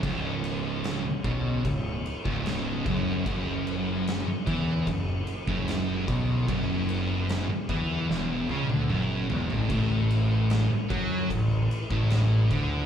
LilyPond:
<<
  \new Staff \with { instrumentName = "Tonewheel organ" } { \time 4/4 \key fis \minor \tempo 4 = 75 << { <cis' cis''>1 | fis1 | b1 | <a b'>1 | } \\ { gis'1~ | gis'1~ | gis'1 | e'1 | } >> }
  \new Staff \with { instrumentName = "Distorted electric guitar" } { \clef bass \time 4/4 \key fis \minor cis,4~ cis,16 r16 b,8 cis,8 r16 cis,8. fis,8 | fis,4~ fis,16 r16 e8 fis,8 r16 fis,8. b,8 | fis,4~ fis,16 r16 e8 e,8 cis16 d16 fis,8 e,16 a,16 | a,4~ a,16 r16 fis8 a,8 r16 a,8. d8 | }
  \new Staff \with { instrumentName = "Distorted electric guitar" } { \clef bass \time 4/4 \key fis \minor cis,4~ cis,16 r16 b,8 cis,8 r16 cis,8. fis,8 | fis,4~ fis,16 r16 e8 fis,8 r16 fis,8. b,8 | fis,4~ fis,16 r16 e8 e,8 cis16 d16 fis,8 e,16 a,16 | a,4~ a,16 r16 fis8 a,8 r16 a,8. d8 | }
  \new Staff \with { instrumentName = "Distorted electric guitar" } { \clef bass \time 4/4 \key fis \minor cis,4~ cis,16 r16 b,8 cis,8 r16 cis,8. fis,8 | fis,4~ fis,16 r16 e8 fis,8 r16 fis,8. b,8 | fis,4~ fis,16 r16 e8 e,8 cis16 d16 fis,8 e,16 a,16 | a,4~ a,16 r16 fis8 a,8 r16 a,8. d8 | }
  \new Staff \with { instrumentName = "Picked electric bass" } { \clef bass \time 4/4 \key fis \minor cis,,4~ cis,,16 r16 b,,8 cis,,8 r16 cis,,8. fis,,8 | fis,,4~ fis,,16 r16 e,8 fis,,8 r16 fis,,8. b,,8 | fis,,4~ fis,,16 r16 e,8 e,,8 cis,16 d,16 fis,,8 e,,16 a,,16 | a,,4~ a,,16 r16 fis,8 a,,8 r16 a,,8. d,8 | }
  \new DrumStaff \with { instrumentName = "Drums" } \drummode { \time 4/4 <cymc bd>8 cymc8 <cymc sn>8 <cymc bd>8 <cymc bd>8 cymc16 bd16 <cymc sn>8 <cymc bd>8 | <cymc bd>8 cymc8 <cymc sn>8 <cymc bd>8 <cymc bd>8 cymc16 bd16 <cymc sn>8 <cymc bd>8 | <cymc bd>8 cymc8 <cymc sn>8 <cymc bd>8 sn8 tommh16 tommh16 toml8 tomfh16 tomfh16 | <cymc bd>8 cymc8 <cymc sn>8 <cymc bd>8 <cymc bd>8 cymc16 bd16 <cymc sn>8 <cymc bd>8 | }
>>